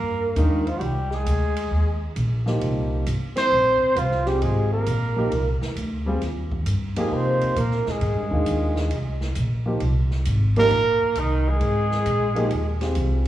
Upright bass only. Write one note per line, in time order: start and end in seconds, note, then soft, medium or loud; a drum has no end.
0.00 0.34 G2 medium
0.36 0.79 D#2 medium
0.80 1.24 C2 medium
1.26 1.69 D2 medium
1.71 2.15 D#2 medium
2.16 2.60 A#1 medium
2.61 3.05 C2 medium
3.06 3.50 G1 medium
3.52 3.80 A#1 medium
3.82 muted upright bass stroke soft
3.96 4.40 C2 medium
4.42 4.85 G#1 medium
4.86 5.30 A#1 medium
5.32 5.60 C2 medium
5.62 muted upright bass stroke soft
5.75 6.19 D2 medium
6.22 6.65 D#2 medium
6.66 7.09 G2 medium
7.11 7.39 C3 medium
7.43 muted upright bass stroke soft
7.56 7.84 A#2 medium
7.87 muted upright bass stroke soft
8.01 8.15 G#2 medium
8.15 8.30 G2 soft
8.31 8.45 D#2 medium
8.46 8.89 D#2 medium
8.91 9.34 C2 medium
9.36 9.79 A#1 medium
9.81 10.24 C2 medium
10.27 10.70 G#1 medium
10.71 10.99 A#1 medium
11.01 muted upright bass stroke soft
11.16 11.59 C2 medium
11.60 12.04 G#1 medium
12.06 12.49 A#1 medium
12.51 12.94 D#2 medium
12.96 13.28 C2 medium